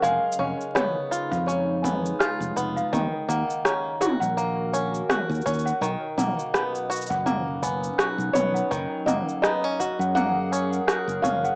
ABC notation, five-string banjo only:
X:1
M:4/4
L:1/16
Q:"Swing 16ths" 1/4=83
K:F#
V:1 name="Five-string banjo"
G,2 C2 B,2 E2 C2 B,2 E2 B,2 | D,2 A,2 C2 F2 A,2 C2 F2 C2 | D,2 A,2 B,2 F2 A,2 B,2 F2 B,2 | D,2 A,2 B, C F2 A,2 C2 F2 C2 |]